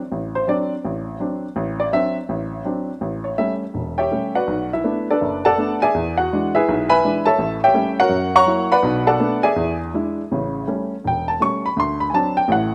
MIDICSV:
0, 0, Header, 1, 2, 480
1, 0, Start_track
1, 0, Tempo, 363196
1, 157, Time_signature, 4, 2, 24, 8
1, 11195, Tempo, 366748
1, 16792, End_track
2, 0, Start_track
2, 0, Title_t, "Grand piano"
2, 0, Program_c, 0, 0
2, 153, Note_on_c, 0, 33, 62
2, 467, Note_on_c, 0, 72, 87
2, 574, Note_off_c, 0, 33, 0
2, 628, Note_on_c, 0, 54, 54
2, 633, Note_off_c, 0, 72, 0
2, 634, Note_on_c, 0, 60, 51
2, 645, Note_on_c, 0, 74, 78
2, 647, Note_on_c, 0, 62, 61
2, 944, Note_off_c, 0, 74, 0
2, 961, Note_off_c, 0, 54, 0
2, 964, Note_off_c, 0, 60, 0
2, 971, Note_off_c, 0, 62, 0
2, 1117, Note_on_c, 0, 33, 68
2, 1527, Note_off_c, 0, 33, 0
2, 1584, Note_on_c, 0, 54, 51
2, 1587, Note_on_c, 0, 60, 44
2, 1597, Note_on_c, 0, 62, 53
2, 1914, Note_off_c, 0, 54, 0
2, 1915, Note_off_c, 0, 60, 0
2, 1920, Note_off_c, 0, 62, 0
2, 2059, Note_on_c, 0, 33, 73
2, 2375, Note_on_c, 0, 74, 81
2, 2473, Note_off_c, 0, 33, 0
2, 2536, Note_off_c, 0, 74, 0
2, 2548, Note_on_c, 0, 54, 55
2, 2549, Note_on_c, 0, 60, 53
2, 2555, Note_on_c, 0, 76, 97
2, 2562, Note_on_c, 0, 62, 60
2, 2849, Note_off_c, 0, 76, 0
2, 2871, Note_off_c, 0, 54, 0
2, 2872, Note_off_c, 0, 60, 0
2, 2878, Note_off_c, 0, 62, 0
2, 3026, Note_on_c, 0, 33, 67
2, 3436, Note_off_c, 0, 33, 0
2, 3501, Note_on_c, 0, 54, 53
2, 3506, Note_on_c, 0, 60, 49
2, 3514, Note_on_c, 0, 62, 55
2, 3824, Note_off_c, 0, 54, 0
2, 3827, Note_off_c, 0, 60, 0
2, 3831, Note_off_c, 0, 62, 0
2, 3979, Note_on_c, 0, 33, 67
2, 4282, Note_on_c, 0, 73, 63
2, 4392, Note_off_c, 0, 33, 0
2, 4447, Note_off_c, 0, 73, 0
2, 4468, Note_on_c, 0, 55, 53
2, 4468, Note_on_c, 0, 76, 85
2, 4473, Note_on_c, 0, 57, 50
2, 4482, Note_on_c, 0, 61, 57
2, 4652, Note_off_c, 0, 76, 0
2, 4790, Note_off_c, 0, 55, 0
2, 4793, Note_off_c, 0, 57, 0
2, 4797, Note_off_c, 0, 61, 0
2, 4941, Note_on_c, 0, 28, 64
2, 5257, Note_on_c, 0, 79, 78
2, 5264, Note_on_c, 0, 73, 71
2, 5272, Note_on_c, 0, 76, 63
2, 5276, Note_on_c, 0, 67, 70
2, 5358, Note_off_c, 0, 28, 0
2, 5430, Note_on_c, 0, 55, 43
2, 5440, Note_on_c, 0, 57, 41
2, 5441, Note_on_c, 0, 61, 49
2, 5709, Note_off_c, 0, 79, 0
2, 5712, Note_off_c, 0, 73, 0
2, 5716, Note_off_c, 0, 76, 0
2, 5719, Note_off_c, 0, 67, 0
2, 5754, Note_on_c, 0, 78, 72
2, 5756, Note_on_c, 0, 71, 68
2, 5757, Note_on_c, 0, 74, 61
2, 5761, Note_off_c, 0, 55, 0
2, 5761, Note_on_c, 0, 66, 67
2, 5766, Note_off_c, 0, 57, 0
2, 5767, Note_off_c, 0, 61, 0
2, 5913, Note_on_c, 0, 35, 69
2, 6203, Note_off_c, 0, 78, 0
2, 6204, Note_off_c, 0, 71, 0
2, 6205, Note_off_c, 0, 74, 0
2, 6207, Note_off_c, 0, 66, 0
2, 6256, Note_on_c, 0, 64, 60
2, 6256, Note_on_c, 0, 76, 76
2, 6337, Note_off_c, 0, 35, 0
2, 6396, Note_on_c, 0, 59, 47
2, 6400, Note_on_c, 0, 57, 53
2, 6406, Note_on_c, 0, 62, 54
2, 6701, Note_off_c, 0, 64, 0
2, 6701, Note_off_c, 0, 76, 0
2, 6734, Note_off_c, 0, 62, 0
2, 6735, Note_off_c, 0, 59, 0
2, 6737, Note_off_c, 0, 57, 0
2, 6747, Note_on_c, 0, 74, 82
2, 6752, Note_on_c, 0, 69, 65
2, 6754, Note_on_c, 0, 62, 67
2, 6760, Note_on_c, 0, 71, 62
2, 6890, Note_on_c, 0, 30, 69
2, 7187, Note_off_c, 0, 74, 0
2, 7189, Note_off_c, 0, 69, 0
2, 7191, Note_off_c, 0, 62, 0
2, 7194, Note_off_c, 0, 71, 0
2, 7203, Note_on_c, 0, 81, 99
2, 7213, Note_on_c, 0, 69, 84
2, 7213, Note_on_c, 0, 74, 83
2, 7214, Note_on_c, 0, 78, 73
2, 7311, Note_off_c, 0, 30, 0
2, 7370, Note_on_c, 0, 57, 51
2, 7376, Note_on_c, 0, 59, 43
2, 7383, Note_on_c, 0, 62, 54
2, 7656, Note_off_c, 0, 81, 0
2, 7661, Note_off_c, 0, 69, 0
2, 7661, Note_off_c, 0, 74, 0
2, 7661, Note_off_c, 0, 78, 0
2, 7693, Note_on_c, 0, 80, 100
2, 7700, Note_on_c, 0, 68, 70
2, 7701, Note_on_c, 0, 74, 75
2, 7701, Note_on_c, 0, 76, 72
2, 7705, Note_off_c, 0, 57, 0
2, 7708, Note_off_c, 0, 59, 0
2, 7712, Note_off_c, 0, 62, 0
2, 7857, Note_on_c, 0, 40, 69
2, 8139, Note_off_c, 0, 80, 0
2, 8143, Note_off_c, 0, 68, 0
2, 8143, Note_off_c, 0, 74, 0
2, 8143, Note_off_c, 0, 76, 0
2, 8161, Note_on_c, 0, 78, 86
2, 8173, Note_on_c, 0, 66, 71
2, 8273, Note_off_c, 0, 40, 0
2, 8361, Note_on_c, 0, 52, 56
2, 8364, Note_on_c, 0, 56, 53
2, 8371, Note_on_c, 0, 62, 64
2, 8611, Note_off_c, 0, 78, 0
2, 8617, Note_off_c, 0, 66, 0
2, 8653, Note_on_c, 0, 76, 93
2, 8663, Note_on_c, 0, 64, 75
2, 8663, Note_on_c, 0, 71, 74
2, 8667, Note_on_c, 0, 68, 80
2, 8677, Note_off_c, 0, 52, 0
2, 8679, Note_off_c, 0, 56, 0
2, 8683, Note_off_c, 0, 62, 0
2, 8835, Note_on_c, 0, 35, 77
2, 9091, Note_off_c, 0, 76, 0
2, 9096, Note_off_c, 0, 64, 0
2, 9096, Note_off_c, 0, 71, 0
2, 9099, Note_off_c, 0, 68, 0
2, 9111, Note_on_c, 0, 80, 97
2, 9112, Note_on_c, 0, 76, 86
2, 9114, Note_on_c, 0, 83, 112
2, 9117, Note_on_c, 0, 71, 86
2, 9235, Note_off_c, 0, 35, 0
2, 9302, Note_on_c, 0, 52, 51
2, 9308, Note_on_c, 0, 56, 47
2, 9312, Note_on_c, 0, 62, 61
2, 9556, Note_off_c, 0, 80, 0
2, 9557, Note_off_c, 0, 76, 0
2, 9558, Note_off_c, 0, 83, 0
2, 9560, Note_off_c, 0, 71, 0
2, 9589, Note_on_c, 0, 81, 99
2, 9601, Note_on_c, 0, 73, 77
2, 9602, Note_on_c, 0, 69, 74
2, 9603, Note_on_c, 0, 76, 76
2, 9619, Note_off_c, 0, 52, 0
2, 9622, Note_off_c, 0, 56, 0
2, 9624, Note_off_c, 0, 62, 0
2, 9759, Note_on_c, 0, 33, 73
2, 10031, Note_off_c, 0, 81, 0
2, 10037, Note_off_c, 0, 73, 0
2, 10038, Note_off_c, 0, 69, 0
2, 10039, Note_off_c, 0, 76, 0
2, 10093, Note_on_c, 0, 67, 79
2, 10095, Note_on_c, 0, 73, 75
2, 10095, Note_on_c, 0, 76, 79
2, 10096, Note_on_c, 0, 79, 103
2, 10169, Note_off_c, 0, 33, 0
2, 10222, Note_on_c, 0, 55, 62
2, 10234, Note_on_c, 0, 57, 55
2, 10236, Note_on_c, 0, 61, 68
2, 10526, Note_off_c, 0, 67, 0
2, 10527, Note_off_c, 0, 73, 0
2, 10527, Note_off_c, 0, 76, 0
2, 10528, Note_off_c, 0, 79, 0
2, 10557, Note_off_c, 0, 55, 0
2, 10563, Note_off_c, 0, 57, 0
2, 10564, Note_off_c, 0, 61, 0
2, 10565, Note_on_c, 0, 70, 81
2, 10568, Note_on_c, 0, 78, 105
2, 10571, Note_on_c, 0, 73, 81
2, 10578, Note_on_c, 0, 66, 81
2, 10695, Note_on_c, 0, 42, 70
2, 11003, Note_off_c, 0, 70, 0
2, 11004, Note_off_c, 0, 78, 0
2, 11006, Note_off_c, 0, 73, 0
2, 11010, Note_off_c, 0, 66, 0
2, 11042, Note_on_c, 0, 82, 99
2, 11044, Note_on_c, 0, 78, 92
2, 11046, Note_on_c, 0, 85, 122
2, 11049, Note_on_c, 0, 73, 95
2, 11120, Note_off_c, 0, 42, 0
2, 11185, Note_on_c, 0, 54, 57
2, 11190, Note_on_c, 0, 58, 50
2, 11200, Note_on_c, 0, 64, 61
2, 11480, Note_off_c, 0, 82, 0
2, 11481, Note_off_c, 0, 78, 0
2, 11482, Note_off_c, 0, 85, 0
2, 11484, Note_off_c, 0, 73, 0
2, 11516, Note_on_c, 0, 83, 100
2, 11517, Note_off_c, 0, 54, 0
2, 11519, Note_off_c, 0, 58, 0
2, 11521, Note_on_c, 0, 71, 87
2, 11524, Note_off_c, 0, 64, 0
2, 11525, Note_on_c, 0, 78, 89
2, 11531, Note_on_c, 0, 74, 79
2, 11660, Note_on_c, 0, 35, 74
2, 11668, Note_on_c, 0, 47, 80
2, 11956, Note_off_c, 0, 83, 0
2, 11958, Note_off_c, 0, 71, 0
2, 11961, Note_off_c, 0, 78, 0
2, 11964, Note_off_c, 0, 74, 0
2, 11979, Note_on_c, 0, 81, 94
2, 11982, Note_on_c, 0, 69, 80
2, 11983, Note_on_c, 0, 78, 78
2, 11988, Note_on_c, 0, 74, 74
2, 12080, Note_off_c, 0, 35, 0
2, 12084, Note_off_c, 0, 47, 0
2, 12147, Note_on_c, 0, 59, 58
2, 12151, Note_on_c, 0, 57, 61
2, 12153, Note_on_c, 0, 62, 66
2, 12427, Note_off_c, 0, 81, 0
2, 12429, Note_off_c, 0, 69, 0
2, 12429, Note_off_c, 0, 78, 0
2, 12432, Note_off_c, 0, 74, 0
2, 12454, Note_on_c, 0, 80, 101
2, 12460, Note_on_c, 0, 68, 76
2, 12462, Note_on_c, 0, 74, 77
2, 12467, Note_on_c, 0, 76, 73
2, 12478, Note_off_c, 0, 59, 0
2, 12480, Note_off_c, 0, 57, 0
2, 12481, Note_off_c, 0, 62, 0
2, 12621, Note_on_c, 0, 40, 77
2, 12909, Note_off_c, 0, 80, 0
2, 12912, Note_off_c, 0, 68, 0
2, 12913, Note_off_c, 0, 74, 0
2, 12916, Note_off_c, 0, 76, 0
2, 13050, Note_off_c, 0, 40, 0
2, 13118, Note_on_c, 0, 56, 52
2, 13120, Note_on_c, 0, 62, 50
2, 13128, Note_on_c, 0, 64, 61
2, 13460, Note_off_c, 0, 56, 0
2, 13461, Note_off_c, 0, 62, 0
2, 13465, Note_off_c, 0, 64, 0
2, 13608, Note_on_c, 0, 49, 65
2, 13614, Note_on_c, 0, 33, 64
2, 14033, Note_off_c, 0, 49, 0
2, 14037, Note_off_c, 0, 33, 0
2, 14077, Note_on_c, 0, 55, 53
2, 14084, Note_on_c, 0, 57, 47
2, 14090, Note_on_c, 0, 61, 58
2, 14421, Note_off_c, 0, 55, 0
2, 14424, Note_off_c, 0, 57, 0
2, 14427, Note_off_c, 0, 61, 0
2, 14562, Note_on_c, 0, 28, 62
2, 14603, Note_on_c, 0, 79, 83
2, 14873, Note_on_c, 0, 81, 79
2, 14893, Note_off_c, 0, 79, 0
2, 14983, Note_off_c, 0, 28, 0
2, 15028, Note_on_c, 0, 55, 51
2, 15033, Note_on_c, 0, 57, 44
2, 15043, Note_off_c, 0, 81, 0
2, 15045, Note_on_c, 0, 61, 52
2, 15056, Note_on_c, 0, 85, 96
2, 15356, Note_off_c, 0, 85, 0
2, 15364, Note_on_c, 0, 83, 83
2, 15367, Note_off_c, 0, 55, 0
2, 15370, Note_off_c, 0, 57, 0
2, 15376, Note_off_c, 0, 61, 0
2, 15508, Note_on_c, 0, 38, 64
2, 15525, Note_off_c, 0, 83, 0
2, 15548, Note_on_c, 0, 84, 92
2, 15818, Note_on_c, 0, 83, 86
2, 15838, Note_off_c, 0, 84, 0
2, 15928, Note_off_c, 0, 38, 0
2, 15943, Note_on_c, 0, 80, 60
2, 15985, Note_off_c, 0, 80, 0
2, 15989, Note_off_c, 0, 83, 0
2, 15992, Note_on_c, 0, 54, 54
2, 15998, Note_on_c, 0, 60, 50
2, 15999, Note_on_c, 0, 62, 58
2, 16003, Note_on_c, 0, 81, 90
2, 16298, Note_on_c, 0, 79, 91
2, 16303, Note_off_c, 0, 81, 0
2, 16323, Note_off_c, 0, 54, 0
2, 16326, Note_off_c, 0, 60, 0
2, 16327, Note_off_c, 0, 62, 0
2, 16442, Note_on_c, 0, 33, 71
2, 16451, Note_on_c, 0, 45, 68
2, 16466, Note_off_c, 0, 79, 0
2, 16494, Note_on_c, 0, 78, 84
2, 16785, Note_off_c, 0, 78, 0
2, 16792, Note_off_c, 0, 33, 0
2, 16792, Note_off_c, 0, 45, 0
2, 16792, End_track
0, 0, End_of_file